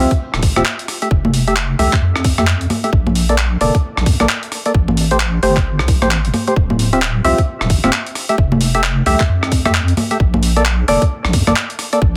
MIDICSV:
0, 0, Header, 1, 4, 480
1, 0, Start_track
1, 0, Tempo, 454545
1, 1171, Time_signature, 4, 2, 24, 8
1, 12850, End_track
2, 0, Start_track
2, 0, Title_t, "Synth stab"
2, 0, Program_c, 0, 62
2, 0, Note_on_c, 0, 60, 96
2, 0, Note_on_c, 0, 65, 89
2, 0, Note_on_c, 0, 67, 86
2, 0, Note_on_c, 0, 76, 108
2, 134, Note_off_c, 0, 60, 0
2, 134, Note_off_c, 0, 65, 0
2, 134, Note_off_c, 0, 76, 0
2, 135, Note_off_c, 0, 67, 0
2, 596, Note_on_c, 0, 65, 88
2, 597, Note_on_c, 0, 60, 93
2, 597, Note_on_c, 0, 67, 86
2, 597, Note_on_c, 0, 76, 103
2, 667, Note_off_c, 0, 60, 0
2, 667, Note_off_c, 0, 65, 0
2, 667, Note_off_c, 0, 67, 0
2, 667, Note_off_c, 0, 76, 0
2, 1077, Note_on_c, 0, 57, 74
2, 1077, Note_on_c, 0, 67, 68
2, 1077, Note_on_c, 0, 76, 83
2, 1147, Note_off_c, 0, 57, 0
2, 1147, Note_off_c, 0, 67, 0
2, 1147, Note_off_c, 0, 76, 0
2, 1558, Note_on_c, 0, 57, 87
2, 1558, Note_on_c, 0, 67, 77
2, 1558, Note_on_c, 0, 76, 93
2, 1627, Note_off_c, 0, 57, 0
2, 1627, Note_off_c, 0, 67, 0
2, 1627, Note_off_c, 0, 76, 0
2, 1891, Note_on_c, 0, 67, 90
2, 1891, Note_on_c, 0, 76, 109
2, 1892, Note_on_c, 0, 57, 95
2, 2055, Note_off_c, 0, 57, 0
2, 2055, Note_off_c, 0, 67, 0
2, 2055, Note_off_c, 0, 76, 0
2, 2517, Note_on_c, 0, 67, 86
2, 2517, Note_on_c, 0, 76, 103
2, 2518, Note_on_c, 0, 57, 95
2, 2587, Note_off_c, 0, 57, 0
2, 2587, Note_off_c, 0, 67, 0
2, 2587, Note_off_c, 0, 76, 0
2, 2997, Note_on_c, 0, 57, 77
2, 2998, Note_on_c, 0, 67, 69
2, 2998, Note_on_c, 0, 76, 82
2, 3067, Note_off_c, 0, 57, 0
2, 3067, Note_off_c, 0, 67, 0
2, 3067, Note_off_c, 0, 76, 0
2, 3477, Note_on_c, 0, 58, 89
2, 3477, Note_on_c, 0, 69, 79
2, 3477, Note_on_c, 0, 74, 93
2, 3547, Note_off_c, 0, 58, 0
2, 3547, Note_off_c, 0, 69, 0
2, 3547, Note_off_c, 0, 74, 0
2, 3812, Note_on_c, 0, 58, 95
2, 3812, Note_on_c, 0, 69, 90
2, 3812, Note_on_c, 0, 74, 104
2, 3975, Note_off_c, 0, 58, 0
2, 3975, Note_off_c, 0, 69, 0
2, 3975, Note_off_c, 0, 74, 0
2, 4438, Note_on_c, 0, 58, 97
2, 4438, Note_on_c, 0, 69, 88
2, 4438, Note_on_c, 0, 74, 104
2, 4507, Note_off_c, 0, 58, 0
2, 4507, Note_off_c, 0, 69, 0
2, 4507, Note_off_c, 0, 74, 0
2, 4919, Note_on_c, 0, 58, 73
2, 4919, Note_on_c, 0, 69, 68
2, 4919, Note_on_c, 0, 74, 84
2, 4988, Note_off_c, 0, 58, 0
2, 4988, Note_off_c, 0, 69, 0
2, 4988, Note_off_c, 0, 74, 0
2, 5399, Note_on_c, 0, 72, 96
2, 5400, Note_on_c, 0, 57, 88
2, 5400, Note_on_c, 0, 67, 80
2, 5468, Note_off_c, 0, 57, 0
2, 5468, Note_off_c, 0, 67, 0
2, 5468, Note_off_c, 0, 72, 0
2, 5732, Note_on_c, 0, 67, 87
2, 5732, Note_on_c, 0, 72, 105
2, 5733, Note_on_c, 0, 57, 95
2, 5895, Note_off_c, 0, 67, 0
2, 5895, Note_off_c, 0, 72, 0
2, 5896, Note_off_c, 0, 57, 0
2, 6358, Note_on_c, 0, 57, 94
2, 6358, Note_on_c, 0, 67, 86
2, 6358, Note_on_c, 0, 72, 106
2, 6427, Note_off_c, 0, 57, 0
2, 6427, Note_off_c, 0, 72, 0
2, 6428, Note_off_c, 0, 67, 0
2, 6837, Note_on_c, 0, 67, 68
2, 6838, Note_on_c, 0, 57, 75
2, 6838, Note_on_c, 0, 72, 85
2, 6907, Note_off_c, 0, 57, 0
2, 6907, Note_off_c, 0, 67, 0
2, 6907, Note_off_c, 0, 72, 0
2, 7317, Note_on_c, 0, 60, 91
2, 7317, Note_on_c, 0, 65, 79
2, 7317, Note_on_c, 0, 67, 84
2, 7317, Note_on_c, 0, 76, 96
2, 7387, Note_off_c, 0, 60, 0
2, 7387, Note_off_c, 0, 65, 0
2, 7387, Note_off_c, 0, 67, 0
2, 7387, Note_off_c, 0, 76, 0
2, 7651, Note_on_c, 0, 60, 97
2, 7651, Note_on_c, 0, 65, 89
2, 7651, Note_on_c, 0, 67, 90
2, 7651, Note_on_c, 0, 76, 111
2, 7815, Note_off_c, 0, 60, 0
2, 7815, Note_off_c, 0, 65, 0
2, 7815, Note_off_c, 0, 67, 0
2, 7815, Note_off_c, 0, 76, 0
2, 8277, Note_on_c, 0, 60, 97
2, 8277, Note_on_c, 0, 65, 89
2, 8277, Note_on_c, 0, 67, 87
2, 8278, Note_on_c, 0, 76, 103
2, 8347, Note_off_c, 0, 60, 0
2, 8347, Note_off_c, 0, 65, 0
2, 8347, Note_off_c, 0, 67, 0
2, 8347, Note_off_c, 0, 76, 0
2, 8756, Note_on_c, 0, 57, 74
2, 8756, Note_on_c, 0, 67, 69
2, 8757, Note_on_c, 0, 76, 82
2, 8826, Note_off_c, 0, 57, 0
2, 8826, Note_off_c, 0, 67, 0
2, 8827, Note_off_c, 0, 76, 0
2, 9236, Note_on_c, 0, 57, 87
2, 9236, Note_on_c, 0, 67, 80
2, 9236, Note_on_c, 0, 76, 98
2, 9306, Note_off_c, 0, 57, 0
2, 9306, Note_off_c, 0, 67, 0
2, 9306, Note_off_c, 0, 76, 0
2, 9571, Note_on_c, 0, 57, 95
2, 9571, Note_on_c, 0, 67, 91
2, 9571, Note_on_c, 0, 76, 111
2, 9735, Note_off_c, 0, 57, 0
2, 9735, Note_off_c, 0, 67, 0
2, 9735, Note_off_c, 0, 76, 0
2, 10196, Note_on_c, 0, 57, 93
2, 10196, Note_on_c, 0, 76, 106
2, 10197, Note_on_c, 0, 67, 87
2, 10266, Note_off_c, 0, 57, 0
2, 10266, Note_off_c, 0, 76, 0
2, 10267, Note_off_c, 0, 67, 0
2, 10674, Note_on_c, 0, 57, 75
2, 10674, Note_on_c, 0, 76, 81
2, 10675, Note_on_c, 0, 67, 72
2, 10745, Note_off_c, 0, 57, 0
2, 10746, Note_off_c, 0, 67, 0
2, 10746, Note_off_c, 0, 76, 0
2, 11156, Note_on_c, 0, 58, 90
2, 11156, Note_on_c, 0, 74, 98
2, 11157, Note_on_c, 0, 69, 82
2, 11227, Note_off_c, 0, 58, 0
2, 11227, Note_off_c, 0, 69, 0
2, 11227, Note_off_c, 0, 74, 0
2, 11491, Note_on_c, 0, 58, 94
2, 11491, Note_on_c, 0, 69, 90
2, 11491, Note_on_c, 0, 74, 108
2, 11655, Note_off_c, 0, 58, 0
2, 11655, Note_off_c, 0, 69, 0
2, 11655, Note_off_c, 0, 74, 0
2, 12116, Note_on_c, 0, 58, 97
2, 12117, Note_on_c, 0, 69, 89
2, 12117, Note_on_c, 0, 74, 101
2, 12187, Note_off_c, 0, 58, 0
2, 12187, Note_off_c, 0, 69, 0
2, 12187, Note_off_c, 0, 74, 0
2, 12595, Note_on_c, 0, 74, 81
2, 12596, Note_on_c, 0, 58, 76
2, 12596, Note_on_c, 0, 69, 69
2, 12666, Note_off_c, 0, 58, 0
2, 12666, Note_off_c, 0, 74, 0
2, 12667, Note_off_c, 0, 69, 0
2, 12850, End_track
3, 0, Start_track
3, 0, Title_t, "Wobble bass"
3, 0, Program_c, 1, 39
3, 356, Note_on_c, 1, 26, 86
3, 452, Note_on_c, 1, 33, 94
3, 467, Note_off_c, 1, 26, 0
3, 557, Note_off_c, 1, 33, 0
3, 593, Note_on_c, 1, 26, 85
3, 663, Note_off_c, 1, 26, 0
3, 1173, Note_on_c, 1, 29, 96
3, 1850, Note_off_c, 1, 29, 0
3, 1890, Note_on_c, 1, 36, 80
3, 1996, Note_off_c, 1, 36, 0
3, 2130, Note_on_c, 1, 41, 98
3, 2808, Note_off_c, 1, 41, 0
3, 3092, Note_on_c, 1, 34, 98
3, 3769, Note_off_c, 1, 34, 0
3, 3812, Note_on_c, 1, 29, 80
3, 3917, Note_off_c, 1, 29, 0
3, 4197, Note_on_c, 1, 34, 88
3, 4291, Note_on_c, 1, 41, 96
3, 4307, Note_off_c, 1, 34, 0
3, 4396, Note_off_c, 1, 41, 0
3, 4436, Note_on_c, 1, 34, 85
3, 4504, Note_off_c, 1, 34, 0
3, 5010, Note_on_c, 1, 33, 98
3, 5689, Note_off_c, 1, 33, 0
3, 5732, Note_on_c, 1, 31, 78
3, 6118, Note_on_c, 1, 36, 82
3, 6134, Note_off_c, 1, 31, 0
3, 6357, Note_on_c, 1, 33, 97
3, 6372, Note_off_c, 1, 36, 0
3, 6596, Note_on_c, 1, 31, 102
3, 6612, Note_off_c, 1, 33, 0
3, 6664, Note_off_c, 1, 31, 0
3, 6931, Note_on_c, 1, 26, 92
3, 7609, Note_off_c, 1, 26, 0
3, 7651, Note_on_c, 1, 36, 82
3, 7756, Note_off_c, 1, 36, 0
3, 8037, Note_on_c, 1, 26, 87
3, 8131, Note_on_c, 1, 33, 92
3, 8147, Note_off_c, 1, 26, 0
3, 8236, Note_off_c, 1, 33, 0
3, 8277, Note_on_c, 1, 26, 87
3, 8345, Note_off_c, 1, 26, 0
3, 8851, Note_on_c, 1, 29, 95
3, 9529, Note_off_c, 1, 29, 0
3, 9569, Note_on_c, 1, 36, 81
3, 9675, Note_off_c, 1, 36, 0
3, 9810, Note_on_c, 1, 41, 97
3, 10488, Note_off_c, 1, 41, 0
3, 10771, Note_on_c, 1, 34, 101
3, 11449, Note_off_c, 1, 34, 0
3, 11490, Note_on_c, 1, 29, 80
3, 11596, Note_off_c, 1, 29, 0
3, 11877, Note_on_c, 1, 34, 87
3, 11971, Note_on_c, 1, 41, 97
3, 11987, Note_off_c, 1, 34, 0
3, 12076, Note_off_c, 1, 41, 0
3, 12118, Note_on_c, 1, 34, 89
3, 12185, Note_off_c, 1, 34, 0
3, 12690, Note_on_c, 1, 33, 97
3, 12850, Note_off_c, 1, 33, 0
3, 12850, End_track
4, 0, Start_track
4, 0, Title_t, "Drums"
4, 116, Note_on_c, 9, 42, 64
4, 118, Note_on_c, 9, 36, 106
4, 222, Note_off_c, 9, 42, 0
4, 223, Note_off_c, 9, 36, 0
4, 355, Note_on_c, 9, 37, 68
4, 449, Note_on_c, 9, 46, 113
4, 452, Note_on_c, 9, 36, 106
4, 461, Note_off_c, 9, 37, 0
4, 555, Note_off_c, 9, 46, 0
4, 557, Note_off_c, 9, 36, 0
4, 596, Note_on_c, 9, 37, 58
4, 596, Note_on_c, 9, 42, 65
4, 596, Note_on_c, 9, 63, 73
4, 689, Note_on_c, 9, 39, 111
4, 701, Note_off_c, 9, 37, 0
4, 701, Note_off_c, 9, 42, 0
4, 701, Note_off_c, 9, 63, 0
4, 795, Note_off_c, 9, 39, 0
4, 837, Note_on_c, 9, 42, 52
4, 932, Note_on_c, 9, 37, 33
4, 932, Note_on_c, 9, 46, 95
4, 942, Note_off_c, 9, 42, 0
4, 1038, Note_off_c, 9, 37, 0
4, 1038, Note_off_c, 9, 46, 0
4, 1077, Note_on_c, 9, 42, 63
4, 1172, Note_on_c, 9, 36, 120
4, 1183, Note_off_c, 9, 42, 0
4, 1277, Note_off_c, 9, 36, 0
4, 1318, Note_on_c, 9, 63, 74
4, 1411, Note_on_c, 9, 46, 104
4, 1423, Note_off_c, 9, 63, 0
4, 1516, Note_off_c, 9, 46, 0
4, 1558, Note_on_c, 9, 42, 61
4, 1651, Note_on_c, 9, 39, 121
4, 1663, Note_off_c, 9, 42, 0
4, 1757, Note_off_c, 9, 39, 0
4, 1892, Note_on_c, 9, 46, 92
4, 1997, Note_off_c, 9, 46, 0
4, 2038, Note_on_c, 9, 36, 107
4, 2038, Note_on_c, 9, 39, 61
4, 2038, Note_on_c, 9, 42, 60
4, 2143, Note_off_c, 9, 36, 0
4, 2144, Note_off_c, 9, 39, 0
4, 2144, Note_off_c, 9, 42, 0
4, 2277, Note_on_c, 9, 37, 67
4, 2370, Note_on_c, 9, 46, 110
4, 2371, Note_on_c, 9, 36, 112
4, 2382, Note_off_c, 9, 37, 0
4, 2476, Note_off_c, 9, 46, 0
4, 2477, Note_off_c, 9, 36, 0
4, 2515, Note_on_c, 9, 37, 56
4, 2515, Note_on_c, 9, 42, 63
4, 2515, Note_on_c, 9, 63, 72
4, 2609, Note_on_c, 9, 39, 121
4, 2621, Note_off_c, 9, 37, 0
4, 2621, Note_off_c, 9, 42, 0
4, 2621, Note_off_c, 9, 63, 0
4, 2714, Note_off_c, 9, 39, 0
4, 2756, Note_on_c, 9, 42, 49
4, 2852, Note_on_c, 9, 37, 32
4, 2852, Note_on_c, 9, 46, 92
4, 2852, Note_on_c, 9, 63, 77
4, 2862, Note_off_c, 9, 42, 0
4, 2957, Note_off_c, 9, 37, 0
4, 2957, Note_off_c, 9, 46, 0
4, 2957, Note_off_c, 9, 63, 0
4, 2999, Note_on_c, 9, 42, 61
4, 3091, Note_on_c, 9, 36, 118
4, 3104, Note_off_c, 9, 42, 0
4, 3196, Note_off_c, 9, 36, 0
4, 3238, Note_on_c, 9, 63, 75
4, 3331, Note_on_c, 9, 46, 102
4, 3344, Note_off_c, 9, 63, 0
4, 3436, Note_off_c, 9, 46, 0
4, 3477, Note_on_c, 9, 42, 60
4, 3570, Note_on_c, 9, 39, 122
4, 3583, Note_off_c, 9, 42, 0
4, 3676, Note_off_c, 9, 39, 0
4, 3810, Note_on_c, 9, 46, 87
4, 3915, Note_off_c, 9, 46, 0
4, 3957, Note_on_c, 9, 36, 110
4, 3957, Note_on_c, 9, 42, 60
4, 4062, Note_off_c, 9, 36, 0
4, 4063, Note_off_c, 9, 42, 0
4, 4197, Note_on_c, 9, 37, 69
4, 4290, Note_on_c, 9, 46, 104
4, 4291, Note_on_c, 9, 36, 112
4, 4302, Note_off_c, 9, 37, 0
4, 4396, Note_off_c, 9, 36, 0
4, 4396, Note_off_c, 9, 46, 0
4, 4436, Note_on_c, 9, 37, 58
4, 4436, Note_on_c, 9, 42, 61
4, 4436, Note_on_c, 9, 63, 77
4, 4531, Note_on_c, 9, 39, 121
4, 4542, Note_off_c, 9, 37, 0
4, 4542, Note_off_c, 9, 42, 0
4, 4542, Note_off_c, 9, 63, 0
4, 4636, Note_off_c, 9, 39, 0
4, 4677, Note_on_c, 9, 42, 49
4, 4771, Note_on_c, 9, 37, 30
4, 4771, Note_on_c, 9, 46, 86
4, 4782, Note_off_c, 9, 42, 0
4, 4876, Note_off_c, 9, 37, 0
4, 4876, Note_off_c, 9, 46, 0
4, 4916, Note_on_c, 9, 42, 60
4, 5011, Note_on_c, 9, 36, 122
4, 5022, Note_off_c, 9, 42, 0
4, 5117, Note_off_c, 9, 36, 0
4, 5156, Note_on_c, 9, 63, 80
4, 5250, Note_on_c, 9, 46, 99
4, 5262, Note_off_c, 9, 63, 0
4, 5356, Note_off_c, 9, 46, 0
4, 5396, Note_on_c, 9, 42, 61
4, 5490, Note_on_c, 9, 39, 119
4, 5502, Note_off_c, 9, 42, 0
4, 5595, Note_off_c, 9, 39, 0
4, 5731, Note_on_c, 9, 46, 87
4, 5836, Note_off_c, 9, 46, 0
4, 5877, Note_on_c, 9, 36, 108
4, 5877, Note_on_c, 9, 39, 65
4, 5877, Note_on_c, 9, 42, 65
4, 5982, Note_off_c, 9, 39, 0
4, 5982, Note_off_c, 9, 42, 0
4, 5983, Note_off_c, 9, 36, 0
4, 6118, Note_on_c, 9, 37, 67
4, 6210, Note_on_c, 9, 46, 101
4, 6211, Note_on_c, 9, 36, 104
4, 6223, Note_off_c, 9, 37, 0
4, 6316, Note_off_c, 9, 46, 0
4, 6317, Note_off_c, 9, 36, 0
4, 6356, Note_on_c, 9, 37, 56
4, 6356, Note_on_c, 9, 42, 64
4, 6356, Note_on_c, 9, 63, 81
4, 6452, Note_on_c, 9, 39, 116
4, 6462, Note_off_c, 9, 37, 0
4, 6462, Note_off_c, 9, 42, 0
4, 6462, Note_off_c, 9, 63, 0
4, 6557, Note_off_c, 9, 39, 0
4, 6597, Note_on_c, 9, 42, 51
4, 6691, Note_on_c, 9, 37, 32
4, 6691, Note_on_c, 9, 46, 86
4, 6691, Note_on_c, 9, 63, 83
4, 6703, Note_off_c, 9, 42, 0
4, 6797, Note_off_c, 9, 37, 0
4, 6797, Note_off_c, 9, 46, 0
4, 6797, Note_off_c, 9, 63, 0
4, 6837, Note_on_c, 9, 42, 60
4, 6932, Note_on_c, 9, 36, 117
4, 6943, Note_off_c, 9, 42, 0
4, 7037, Note_off_c, 9, 36, 0
4, 7077, Note_on_c, 9, 63, 82
4, 7172, Note_on_c, 9, 46, 99
4, 7182, Note_off_c, 9, 63, 0
4, 7277, Note_off_c, 9, 46, 0
4, 7318, Note_on_c, 9, 42, 64
4, 7412, Note_on_c, 9, 39, 121
4, 7423, Note_off_c, 9, 42, 0
4, 7517, Note_off_c, 9, 39, 0
4, 7651, Note_on_c, 9, 46, 86
4, 7757, Note_off_c, 9, 46, 0
4, 7798, Note_on_c, 9, 36, 107
4, 7798, Note_on_c, 9, 42, 67
4, 7903, Note_off_c, 9, 36, 0
4, 7903, Note_off_c, 9, 42, 0
4, 8036, Note_on_c, 9, 37, 65
4, 8130, Note_on_c, 9, 46, 102
4, 8131, Note_on_c, 9, 36, 103
4, 8142, Note_off_c, 9, 37, 0
4, 8236, Note_off_c, 9, 46, 0
4, 8237, Note_off_c, 9, 36, 0
4, 8277, Note_on_c, 9, 37, 53
4, 8277, Note_on_c, 9, 42, 65
4, 8277, Note_on_c, 9, 63, 85
4, 8370, Note_on_c, 9, 39, 116
4, 8383, Note_off_c, 9, 37, 0
4, 8383, Note_off_c, 9, 42, 0
4, 8383, Note_off_c, 9, 63, 0
4, 8475, Note_off_c, 9, 39, 0
4, 8517, Note_on_c, 9, 42, 53
4, 8611, Note_on_c, 9, 37, 30
4, 8611, Note_on_c, 9, 46, 92
4, 8623, Note_off_c, 9, 42, 0
4, 8716, Note_off_c, 9, 37, 0
4, 8716, Note_off_c, 9, 46, 0
4, 8756, Note_on_c, 9, 42, 64
4, 8851, Note_on_c, 9, 36, 112
4, 8862, Note_off_c, 9, 42, 0
4, 8957, Note_off_c, 9, 36, 0
4, 8996, Note_on_c, 9, 63, 83
4, 9089, Note_on_c, 9, 46, 107
4, 9101, Note_off_c, 9, 63, 0
4, 9194, Note_off_c, 9, 46, 0
4, 9236, Note_on_c, 9, 42, 67
4, 9329, Note_on_c, 9, 39, 112
4, 9341, Note_off_c, 9, 42, 0
4, 9434, Note_off_c, 9, 39, 0
4, 9569, Note_on_c, 9, 46, 89
4, 9674, Note_off_c, 9, 46, 0
4, 9714, Note_on_c, 9, 39, 57
4, 9714, Note_on_c, 9, 42, 68
4, 9717, Note_on_c, 9, 36, 107
4, 9820, Note_off_c, 9, 39, 0
4, 9820, Note_off_c, 9, 42, 0
4, 9823, Note_off_c, 9, 36, 0
4, 9956, Note_on_c, 9, 37, 65
4, 10050, Note_on_c, 9, 46, 108
4, 10051, Note_on_c, 9, 36, 101
4, 10062, Note_off_c, 9, 37, 0
4, 10155, Note_off_c, 9, 46, 0
4, 10156, Note_off_c, 9, 36, 0
4, 10195, Note_on_c, 9, 37, 54
4, 10195, Note_on_c, 9, 42, 70
4, 10195, Note_on_c, 9, 63, 87
4, 10289, Note_on_c, 9, 39, 109
4, 10301, Note_off_c, 9, 37, 0
4, 10301, Note_off_c, 9, 42, 0
4, 10301, Note_off_c, 9, 63, 0
4, 10395, Note_off_c, 9, 39, 0
4, 10436, Note_on_c, 9, 42, 54
4, 10530, Note_on_c, 9, 37, 30
4, 10530, Note_on_c, 9, 46, 92
4, 10530, Note_on_c, 9, 63, 83
4, 10542, Note_off_c, 9, 42, 0
4, 10636, Note_off_c, 9, 37, 0
4, 10636, Note_off_c, 9, 46, 0
4, 10636, Note_off_c, 9, 63, 0
4, 10676, Note_on_c, 9, 42, 67
4, 10771, Note_on_c, 9, 36, 107
4, 10781, Note_off_c, 9, 42, 0
4, 10877, Note_off_c, 9, 36, 0
4, 10917, Note_on_c, 9, 63, 82
4, 11010, Note_on_c, 9, 46, 108
4, 11022, Note_off_c, 9, 63, 0
4, 11116, Note_off_c, 9, 46, 0
4, 11157, Note_on_c, 9, 42, 66
4, 11250, Note_on_c, 9, 39, 116
4, 11262, Note_off_c, 9, 42, 0
4, 11356, Note_off_c, 9, 39, 0
4, 11490, Note_on_c, 9, 46, 96
4, 11596, Note_off_c, 9, 46, 0
4, 11636, Note_on_c, 9, 36, 103
4, 11636, Note_on_c, 9, 42, 68
4, 11742, Note_off_c, 9, 36, 0
4, 11742, Note_off_c, 9, 42, 0
4, 11876, Note_on_c, 9, 37, 65
4, 11968, Note_on_c, 9, 46, 110
4, 11970, Note_on_c, 9, 36, 100
4, 11981, Note_off_c, 9, 37, 0
4, 12074, Note_off_c, 9, 46, 0
4, 12076, Note_off_c, 9, 36, 0
4, 12115, Note_on_c, 9, 37, 56
4, 12115, Note_on_c, 9, 42, 70
4, 12115, Note_on_c, 9, 63, 84
4, 12209, Note_on_c, 9, 39, 113
4, 12221, Note_off_c, 9, 37, 0
4, 12221, Note_off_c, 9, 42, 0
4, 12221, Note_off_c, 9, 63, 0
4, 12314, Note_off_c, 9, 39, 0
4, 12355, Note_on_c, 9, 42, 53
4, 12448, Note_on_c, 9, 37, 30
4, 12448, Note_on_c, 9, 46, 95
4, 12461, Note_off_c, 9, 42, 0
4, 12554, Note_off_c, 9, 37, 0
4, 12554, Note_off_c, 9, 46, 0
4, 12595, Note_on_c, 9, 42, 68
4, 12690, Note_on_c, 9, 36, 115
4, 12701, Note_off_c, 9, 42, 0
4, 12796, Note_off_c, 9, 36, 0
4, 12850, End_track
0, 0, End_of_file